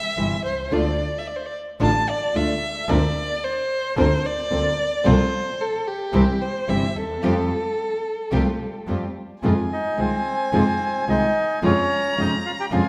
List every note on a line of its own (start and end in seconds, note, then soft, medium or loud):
0.00 0.45 E5 loud
0.17 0.40 G1 medium
0.17 0.34 C3 medium
0.17 0.34 E3 medium
0.17 0.34 G3 medium
0.17 0.35 C4 medium
0.17 0.35 E4 medium
0.45 0.71 C2 soft
0.45 0.74 C5 medium
0.71 0.95 D2 medium
0.71 0.80 D3 medium
0.71 0.94 A3 medium
0.71 0.81 A3 medium
0.71 0.94 D4 medium
0.71 0.81 D4 medium
0.71 0.95 F4 medium
0.71 0.81 F4 medium
0.71 1.20 D5 medium
1.18 1.29 E5 medium
1.27 1.37 D5 medium
1.36 1.48 C5 medium
1.46 1.54 D5 medium
1.80 2.03 A1 medium
1.80 1.89 D3 medium
1.80 2.03 A3 medium
1.80 1.89 A3 medium
1.80 2.03 D4 medium
1.80 1.89 D4 medium
1.80 2.03 F4 medium
1.80 1.90 F4 medium
1.80 2.11 A5 loud
2.09 2.38 D5 medium
2.33 2.57 D2 medium
2.33 2.51 D3 medium
2.33 2.57 A3 medium
2.33 2.52 A3 medium
2.33 2.57 D4 soft
2.33 2.52 D4 medium
2.33 2.57 F4 medium
2.33 2.52 F4 medium
2.33 2.92 E5 medium
2.88 3.12 D2 medium
2.88 2.98 D3 medium
2.88 2.98 A#3 medium
2.88 3.11 C4 medium
2.88 2.98 C4 medium
2.88 3.11 D4 medium
2.88 2.98 F4 medium
2.88 3.11 A#4 medium
2.88 3.46 D5 medium
3.44 3.98 C5 loud
3.96 4.20 D2 medium
3.96 4.06 D3 medium
3.96 4.06 A#3 medium
3.96 4.19 C4 medium
3.96 4.06 C4 medium
3.96 4.20 D4 medium
3.96 4.06 F4 loud
3.96 4.20 A#4 medium
3.96 4.28 C5 loud
4.26 5.08 D5 loud
4.50 4.74 D2 medium
4.50 4.68 D3 medium
4.50 4.68 A#3 medium
4.50 4.73 C4 medium
4.50 4.68 C4 medium
4.50 4.74 D4 soft
4.50 4.68 F4 medium
4.50 4.74 A#4 medium
5.04 5.29 C2 medium
5.04 5.14 C3 medium
5.04 5.14 F3 medium
5.04 5.14 A3 medium
5.04 5.27 C4 medium
5.04 5.14 C4 medium
5.04 5.28 F4 medium
5.04 5.14 F4 medium
5.04 5.28 A4 medium
5.04 5.63 C5 loud
5.61 5.89 A4 medium
5.87 6.43 G4 medium
6.13 6.36 C2 medium
6.13 6.22 C3 medium
6.13 6.22 E3 medium
6.13 6.23 G3 medium
6.13 6.36 C4 medium
6.13 6.23 C4 medium
6.13 6.36 E4 medium
6.13 6.23 E4 medium
6.13 6.36 G4 medium
6.42 6.71 C5 medium
6.67 6.91 G1 medium
6.67 6.85 C3 medium
6.67 6.85 E3 medium
6.67 6.85 G3 medium
6.67 6.91 C4 soft
6.67 6.86 C4 medium
6.67 6.91 E4 soft
6.67 6.86 E4 medium
6.67 6.91 G4 medium
6.67 6.99 E5 medium
6.96 7.22 D#2 medium
6.96 8.89 A4 medium
7.22 7.46 F2 medium
7.22 7.32 F3 medium
7.22 7.32 G3 medium
7.22 7.46 A3 medium
7.22 7.32 C4 medium
7.22 7.46 F4 medium
7.22 7.33 F4 medium
7.22 7.46 G4 medium
8.31 8.56 C2 medium
8.31 8.41 F3 medium
8.31 8.41 G3 medium
8.31 8.55 A3 medium
8.31 8.42 C4 medium
8.31 8.55 F4 medium
8.31 8.42 F4 medium
8.31 8.55 G4 medium
8.87 9.11 F2 medium
8.87 9.05 F3 medium
8.87 9.05 G3 medium
8.87 9.11 A3 soft
8.87 9.05 C4 medium
8.87 9.11 F4 soft
8.87 9.06 F4 medium
8.87 9.11 G4 medium
9.42 9.66 F2 medium
9.42 9.52 C3 medium
9.42 9.52 D#3 medium
9.42 9.66 G#3 medium
9.42 9.53 G#3 medium
9.42 9.53 C4 medium
9.42 9.66 D#4 medium
9.42 9.66 F4 medium
9.42 9.53 F4 medium
9.42 11.64 G#5 medium
9.73 9.98 D#4 soft
9.73 10.00 D#5 medium
9.97 10.21 C2 medium
9.97 10.15 C3 medium
9.97 10.15 D#3 medium
9.97 10.21 G#3 soft
9.97 10.15 G#3 medium
9.97 10.15 C4 medium
9.97 10.50 C4 medium
9.97 10.21 D#4 soft
9.97 10.21 F4 soft
9.97 10.16 F4 medium
9.97 10.50 C5 medium
10.52 10.76 F2 medium
10.52 10.62 C3 medium
10.52 10.62 D#3 medium
10.52 10.76 G#3 medium
10.52 10.62 G#3 medium
10.52 10.62 C4 medium
10.52 11.05 C4 medium
10.52 10.76 D#4 medium
10.52 10.76 F4 medium
10.52 10.62 F4 medium
10.52 11.05 C5 medium
11.07 11.31 C2 medium
11.07 11.25 C3 medium
11.07 11.25 D#3 medium
11.07 11.31 G#3 soft
11.07 11.25 G#3 medium
11.07 11.25 C4 medium
11.07 11.31 D#4 soft
11.07 11.60 D#4 medium
11.07 11.31 F4 soft
11.07 11.25 F4 medium
11.07 11.60 D#5 medium
11.62 11.86 F2 medium
11.62 11.71 C3 medium
11.62 11.71 F3 medium
11.62 11.72 G#3 medium
11.62 11.85 C4 medium
11.62 11.72 C#4 medium
11.62 11.86 C#4 medium
11.62 12.15 C#4 medium
11.62 11.86 F4 medium
11.62 11.72 F4 medium
11.62 12.20 C#5 medium
11.62 12.74 A#5 medium
12.17 12.40 F2 soft
12.17 12.34 C3 medium
12.17 12.34 F3 medium
12.17 12.34 G#3 medium
12.17 12.40 C4 soft
12.17 12.40 C#4 soft
12.17 12.35 C#4 medium
12.17 12.32 D#4 medium
12.17 12.40 F4 soft
12.17 12.35 F4 medium
12.17 12.31 D#5 medium
12.46 12.52 F4 medium
12.46 12.52 F5 medium
12.60 12.66 G4 medium
12.60 12.66 G5 medium
12.71 12.88 F2 medium
12.71 12.81 C3 medium
12.71 12.81 F3 medium
12.71 12.81 G#3 medium
12.71 12.88 C4 medium
12.71 12.88 C#4 medium
12.71 12.81 C#4 medium
12.71 12.88 F4 medium
12.71 12.81 F4 medium
12.71 12.88 F4 medium
12.71 12.88 F5 medium
12.71 12.88 G#5 medium